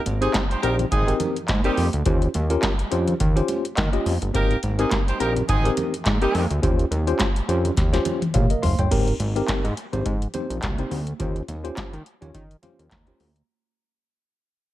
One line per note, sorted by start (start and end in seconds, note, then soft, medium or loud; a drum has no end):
0.06 0.28 G#1 medium
0.06 closed hi-hat medium
0.06 muted conga medium
0.21 0.32 G#3 medium
0.21 0.41 C4 loud
0.21 0.32 C4 medium
0.21 0.41 D#4 medium
0.21 0.32 D#4 medium
0.21 0.42 G4 medium
0.21 0.32 G#4 loud
0.21 0.42 C5 loud
0.21 closed hi-hat soft
0.34 kick loud
0.34 snare loud
0.34 clap loud
0.34 closed hi-hat medium
0.34 high conga medium
0.50 0.61 C4 medium
0.50 0.61 D#4 medium
0.50 0.60 G4 medium
0.50 0.61 C5 medium
0.50 closed hi-hat medium
0.62 0.85 A#1 medium
0.62 0.75 A#3 medium
0.62 0.84 C4 medium
0.62 0.75 D#4 medium
0.62 0.84 D#4 medium
0.62 0.75 G4 medium
0.62 0.85 G4 medium
0.62 0.75 A#4 loud
0.62 0.85 C5 medium
0.62 closed hi-hat medium
0.79 closed hi-hat medium
0.79 low conga medium
0.91 1.14 G#1 loud
0.91 1.14 G#3 loud
0.91 1.14 C4 loud
0.91 1.14 D#4 loud
0.91 1.14 G#4 loud
0.91 kick loud
0.91 closed hi-hat loud
0.91 muted conga soft
1.07 1.35 C4 medium
1.07 1.35 D#4 medium
1.07 1.35 G4 medium
1.07 1.35 A#4 medium
1.07 closed hi-hat medium
1.20 closed hi-hat medium
1.20 muted conga medium
1.20 low conga medium
1.36 closed hi-hat medium
1.48 1.61 G#2 loud
1.48 kick loud
1.48 snare loud
1.48 clap loud
1.48 closed hi-hat medium
1.48 high conga medium
1.64 1.88 G3 loud
1.64 1.84 C4 medium
1.64 1.88 C4 loud
1.64 1.84 D#4 medium
1.64 1.88 D#4 medium
1.64 1.84 G4 medium
1.64 1.88 G4 loud
1.64 1.84 A#4 medium
1.64 closed hi-hat soft
1.77 1.90 F2 loud
1.77 open hi-hat medium
1.77 high conga medium
1.93 2.03 D2 medium
1.93 closed hi-hat medium
2.06 2.28 D#2 loud
2.06 2.27 C#4 medium
2.06 2.28 F4 medium
2.06 2.28 G4 medium
2.06 2.28 C5 medium
2.06 kick loud
2.06 closed hi-hat medium
2.22 closed hi-hat soft
2.34 2.57 D#2 loud
2.34 closed hi-hat medium
2.34 muted conga medium
2.50 2.70 C#4 medium
2.50 2.70 F4 medium
2.50 2.70 G4 medium
2.50 2.70 A#4 loud
2.50 closed hi-hat soft
2.63 kick loud
2.63 snare loud
2.63 clap loud
2.63 closed hi-hat medium
2.63 high conga medium
2.79 closed hi-hat medium
2.91 3.14 F2 medium
2.91 3.13 C#4 medium
2.91 3.13 F4 medium
2.91 3.13 G4 medium
2.91 3.13 C5 loud
2.91 closed hi-hat medium
3.08 closed hi-hat medium
3.08 low conga medium
3.20 3.42 D#2 loud
3.20 kick loud
3.20 closed hi-hat loud
3.20 muted conga soft
3.36 3.63 C#4 medium
3.36 3.63 F4 medium
3.36 3.64 G4 medium
3.36 3.64 C5 loud
3.36 closed hi-hat medium
3.48 closed hi-hat medium
3.48 muted conga medium
3.65 closed hi-hat medium
3.77 3.90 D#3 loud
3.77 kick loud
3.77 snare loud
3.77 clap medium
3.77 closed hi-hat medium
3.77 high conga medium
3.93 4.13 C#4 medium
3.93 4.13 F4 medium
3.93 4.13 G4 medium
3.93 4.13 D#5 medium
3.93 closed hi-hat soft
4.06 4.18 F2 medium
4.06 open hi-hat medium
4.06 high conga medium
4.22 4.32 G1 medium
4.22 closed hi-hat medium
4.34 4.57 G#1 loud
4.34 4.57 A#3 loud
4.34 4.56 C4 medium
4.34 4.57 D#4 loud
4.34 4.56 D#4 medium
4.34 4.57 G4 loud
4.34 4.56 G4 medium
4.34 4.57 A#4 loud
4.34 4.56 A#4 medium
4.34 kick loud
4.34 closed hi-hat medium
4.51 closed hi-hat soft
4.63 4.85 G#1 medium
4.63 closed hi-hat medium
4.63 muted conga medium
4.78 4.89 G#3 medium
4.78 4.98 C4 loud
4.78 4.89 C4 medium
4.78 4.99 D#4 medium
4.78 4.89 D#4 medium
4.78 4.99 G4 medium
4.78 4.89 G#4 loud
4.78 4.99 A#4 loud
4.78 closed hi-hat medium
4.91 kick loud
4.91 snare loud
4.91 clap loud
4.91 closed hi-hat medium
4.91 high conga medium
5.07 5.18 C4 medium
5.07 5.18 D#4 medium
5.07 5.18 G4 medium
5.07 5.18 C5 medium
5.07 closed hi-hat medium
5.20 5.42 A#1 loud
5.20 5.33 A#3 medium
5.20 5.42 C4 medium
5.20 5.42 D#4 medium
5.20 5.33 D#4 medium
5.20 5.33 G4 medium
5.20 5.42 G4 medium
5.20 5.33 A#4 loud
5.20 5.42 A#4 loud
5.20 closed hi-hat medium
5.36 closed hi-hat soft
5.36 low conga medium
5.48 5.71 G#1 loud
5.48 5.71 G#3 loud
5.48 5.71 C4 loud
5.48 5.71 D#4 loud
5.48 5.71 G#4 loud
5.48 kick loud
5.48 closed hi-hat loud
5.48 muted conga soft
5.64 5.92 C4 medium
5.64 5.92 D#4 medium
5.64 5.92 G4 medium
5.64 5.92 A#4 loud
5.64 closed hi-hat medium
5.77 closed hi-hat medium
5.77 muted conga medium
5.77 low conga medium
5.94 closed hi-hat medium
6.06 6.18 G#2 medium
6.06 kick loud
6.06 snare loud
6.06 clap medium
6.06 closed hi-hat medium
6.06 high conga medium
6.21 6.45 G3 loud
6.21 6.41 C4 medium
6.21 6.45 C4 medium
6.21 6.42 D#4 medium
6.21 6.45 D#4 loud
6.21 6.45 G4 loud
6.21 6.42 G4 medium
6.21 6.42 A#4 loud
6.21 closed hi-hat soft
6.34 6.47 F2 loud
6.34 open hi-hat medium
6.34 high conga medium
6.50 6.60 D2 medium
6.50 closed hi-hat medium
6.62 6.85 D#2 loud
6.62 6.84 C#4 medium
6.62 6.85 F4 medium
6.62 6.85 G4 medium
6.62 6.85 C5 medium
6.62 kick loud
6.62 closed hi-hat medium
6.79 closed hi-hat soft
6.91 7.13 D#2 loud
6.91 closed hi-hat medium
6.91 muted conga medium
7.07 7.27 C#4 loud
7.07 7.27 F4 medium
7.07 7.27 G4 medium
7.07 7.27 C5 loud
7.07 closed hi-hat medium
7.19 kick loud
7.19 snare loud
7.19 clap loud
7.19 closed hi-hat medium
7.19 high conga medium
7.36 closed hi-hat medium
7.48 7.71 F2 medium
7.48 7.70 C#4 medium
7.48 7.70 F4 medium
7.48 7.70 G4 medium
7.48 7.70 C5 medium
7.48 closed hi-hat medium
7.65 closed hi-hat medium
7.65 low conga medium
7.77 7.99 D#2 loud
7.77 kick loud
7.77 snare medium
7.77 closed hi-hat loud
7.77 muted conga soft
7.93 8.20 C#4 medium
7.93 8.20 F4 medium
7.93 8.21 G4 medium
7.93 8.21 C5 loud
7.93 snare medium
7.93 closed hi-hat medium
8.05 closed hi-hat medium
8.05 muted conga medium
8.05 low conga medium
8.22 closed hi-hat medium
8.22 high tom medium
8.34 8.47 A#1 loud
8.34 8.50 G4 medium
8.34 8.49 C#5 medium
8.34 8.61 F5 medium
8.34 kick loud
8.34 closed hi-hat medium
8.34 mid tom medium
8.34 high conga medium
8.50 8.63 A#4 medium
8.50 8.62 D#5 medium
8.50 closed hi-hat medium
8.62 8.75 F#1 medium
8.62 8.78 C5 medium
8.62 8.78 F5 medium
8.62 8.89 C6 medium
8.62 floor tom loud
8.62 open hi-hat medium
8.62 high conga medium
8.79 8.89 G1 medium
8.79 9.06 C#5 medium
8.79 9.06 G5 medium
8.79 closed hi-hat medium
8.79 floor tom medium
8.91 9.14 G#1 loud
8.91 9.13 C4 medium
8.91 9.13 D#4 medium
8.91 9.13 G4 medium
8.91 9.13 A#4 medium
8.91 kick loud
8.91 closed hi-hat medium
8.91 crash loud
9.08 closed hi-hat soft
9.20 9.42 G#1 medium
9.20 closed hi-hat medium
9.20 muted conga medium
9.36 9.63 C4 medium
9.36 9.63 D#4 medium
9.36 9.64 G4 medium
9.36 9.64 A#4 loud
9.36 closed hi-hat soft
9.48 9.55 G#2 medium
9.48 kick loud
9.48 snare loud
9.48 clap medium
9.48 closed hi-hat medium
9.48 high conga medium
9.64 9.74 G#2 loud
9.64 closed hi-hat medium
9.77 closed hi-hat medium
9.92 10.03 G#1 loud
9.92 10.13 C4 medium
9.92 10.13 D#4 medium
9.92 10.13 G4 medium
9.92 10.13 C5 medium
9.92 closed hi-hat soft
9.92 low conga medium
10.06 10.28 G#2 loud
10.06 kick loud
10.06 closed hi-hat loud
10.06 muted conga soft
10.22 closed hi-hat medium
10.34 10.56 C4 medium
10.34 10.56 D#4 medium
10.34 10.56 G4 medium
10.34 10.56 C5 medium
10.34 closed hi-hat medium
10.34 muted conga medium
10.34 low conga medium
10.50 10.60 A#1 medium
10.50 closed hi-hat medium
10.63 10.85 C2 medium
10.63 kick loud
10.63 snare loud
10.63 clap medium
10.63 closed hi-hat medium
10.63 high conga medium
10.78 10.98 C4 medium
10.78 10.99 D#4 medium
10.78 10.99 G4 medium
10.78 10.99 C5 medium
10.78 closed hi-hat soft
10.91 11.13 D2 loud
10.91 open hi-hat medium
10.91 high conga medium
11.07 closed hi-hat medium
11.19 11.42 D#2 loud
11.19 11.41 C#4 medium
11.19 11.41 F4 medium
11.19 11.42 G4 medium
11.19 11.42 C5 medium
11.19 kick loud
11.19 closed hi-hat medium
11.36 closed hi-hat soft
11.48 11.71 D#2 medium
11.48 closed hi-hat medium
11.48 muted conga soft
11.64 11.92 C#4 medium
11.64 11.92 F4 medium
11.64 11.92 G4 medium
11.64 11.92 C5 loud
11.64 closed hi-hat soft
11.77 11.84 D#3 soft
11.77 kick loud
11.77 snare loud
11.77 clap loud
11.77 closed hi-hat medium
11.77 high conga medium
11.93 12.03 D#3 medium
11.93 closed hi-hat medium
12.06 closed hi-hat medium
12.21 12.31 D#2 medium
12.21 12.41 C#4 medium
12.21 12.41 F4 medium
12.21 12.42 G4 medium
12.21 12.42 C#5 medium
12.21 closed hi-hat soft
12.21 low conga medium
12.34 12.57 D#3 loud
12.34 kick loud
12.34 closed hi-hat loud
12.34 muted conga soft
12.51 closed hi-hat medium
12.62 12.84 C#4 medium
12.62 12.85 F4 medium
12.62 12.85 G4 medium
12.62 12.85 C5 medium
12.62 12.89 F5 medium
12.62 closed hi-hat medium
12.62 muted conga medium
12.62 low conga medium
12.79 12.89 D#2 medium
12.79 closed hi-hat medium
12.91 13.14 D#2 loud
12.91 13.45 A#5 medium
12.91 kick loud
12.91 snare loud
12.91 clap medium
12.91 closed hi-hat medium
12.91 high conga medium
13.07 13.27 C#4 medium
13.07 13.27 F4 medium
13.07 13.27 G4 medium
13.07 13.28 C5 medium
13.07 closed hi-hat soft
13.20 13.42 D2 loud
13.20 open hi-hat medium
13.20 high conga medium
13.36 closed hi-hat medium